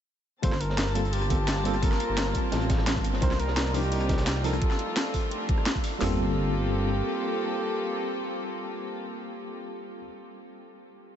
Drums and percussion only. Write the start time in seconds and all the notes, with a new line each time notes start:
0.43 kick, closed hi-hat
0.52 cross-stick, snare
0.60 closed hi-hat
0.70 snare
0.78 snare, closed hi-hat
0.95 closed hi-hat
1.05 closed hi-hat
1.13 closed hi-hat, open hi-hat
1.22 cross-stick, closed hi-hat
1.30 kick, closed hi-hat
1.48 snare, closed hi-hat
1.57 cross-stick
1.65 closed hi-hat
1.73 cross-stick, closed hi-hat
1.83 kick, closed hi-hat
1.92 snare
2.00 closed hi-hat
2.17 snare, closed hi-hat
2.34 kick, closed hi-hat
2.52 snare, closed hi-hat
2.61 closed hi-hat
2.70 kick, snare, closed hi-hat
2.78 cross-stick, snare
2.87 snare, closed hi-hat
2.96 kick
3.04 closed hi-hat
3.13 snare
3.22 kick, closed hi-hat
3.31 cross-stick, snare
3.40 closed hi-hat
3.48 snare
3.57 snare, closed hi-hat
3.74 closed hi-hat, open hi-hat
3.83 closed hi-hat
3.92 closed hi-hat, open hi-hat
4.00 cross-stick, closed hi-hat
4.09 kick, snare, closed hi-hat
4.18 snare, closed hi-hat
4.27 snare, closed hi-hat
4.36 cross-stick
4.44 closed hi-hat, open hi-hat
4.53 cross-stick, closed hi-hat
4.62 kick, closed hi-hat
4.71 snare
4.79 closed hi-hat
4.96 snare, closed hi-hat
5.14 kick, open hi-hat
5.31 closed hi-hat
5.49 kick, closed hi-hat
5.58 cross-stick
5.66 snare, closed hi-hat
5.75 kick
5.84 open hi-hat
6.01 snare, floor tom, open hi-hat